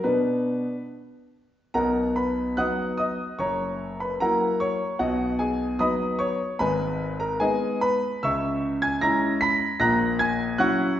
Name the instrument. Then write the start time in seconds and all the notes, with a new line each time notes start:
grand piano
0.04 B2 B3 D4 B4
1.74 B1 B2 A#4 F#5 A#5
2.16 B4 B5
2.57 F#3 B3 D#4 F#5 D#6 F#6
2.98 D#5 D#6
3.39 F#1 F#2 C#5 A#5 C#6
4.00 B4 B5
4.20 F#3 A#3 E4 A#4 F#5 A#5
4.60 C#5 C#6
4.99 B1 B2 F#4 D#5 F#5
5.39 G#4 G#5
5.79 F#3 B3 D#4 D#5 B5 D#6
6.19 C#5 C#6
6.59 G#1 G#2 B4 G#5 B5
7.20 A#4 A#5
7.40 G#3 B3 D#4 G#4 D#5 G#5
7.81 B4 B5
8.23 C#2 C#3 E5 C#6 E6
8.82 G#5 G#6
9.01 G#3 C#4 E4 A#5 A#6
9.41 B5 B6
9.80 A#1 A#2 A#5 F#6 A#6
10.19 G#5 G#6
10.58 F#3 C#4 E4 F#5 C#6 F#6